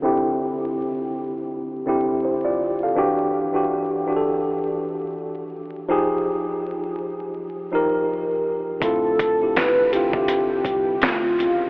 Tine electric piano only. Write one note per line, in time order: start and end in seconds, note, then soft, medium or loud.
0.00 0.02 D3 medium
0.00 1.33 D3 loud
0.00 0.03 C4 medium
0.00 1.33 C4 medium
0.00 0.05 E4 medium
0.00 2.45 F4 medium
0.05 1.34 E4 medium
0.05 1.34 G4 loud
1.86 2.84 D3 medium
1.86 2.84 C4 medium
1.86 2.24 E4 medium
1.86 2.24 G4 medium
2.25 2.45 E4 soft
2.25 2.44 C5 medium
2.45 2.80 F4 medium
2.45 2.79 D5 medium
2.83 3.17 A4 soft
2.83 3.17 F5 medium
2.96 3.45 E3 loud
2.96 3.46 D4 medium
2.96 3.46 F#4 medium
2.96 3.47 G4 loud
3.53 3.99 E3 medium
3.53 4.00 D4 medium
3.53 4.00 F#4 medium
3.53 4.01 G4 medium
4.06 5.36 E3 medium
4.06 5.36 D4 medium
4.06 5.37 F#4 medium
4.06 4.15 G4 medium
4.16 5.41 A4 medium
5.88 7.19 F3 medium
5.88 7.19 D#4 medium
5.88 7.20 G4 medium
5.88 7.20 G#4 loud
7.72 8.70 F3 medium
7.72 8.70 D#4 medium
7.72 8.71 G4 medium
7.72 8.71 A#4 loud
8.80 9.31 D3 medium
8.80 9.31 C4 medium
8.80 9.32 E4 medium
8.80 9.32 F4 medium
9.39 9.85 D3 medium
9.39 9.86 C4 medium
9.39 9.86 E4 medium
9.39 9.87 G4 medium
9.93 10.11 D3 medium
9.93 10.11 C4 medium
9.93 10.12 E4 medium
9.93 10.12 F4 medium
10.14 11.37 D3 medium
10.14 11.38 C4 medium
10.14 10.20 F4 medium
10.14 11.38 E5 medium
10.23 11.42 G4 medium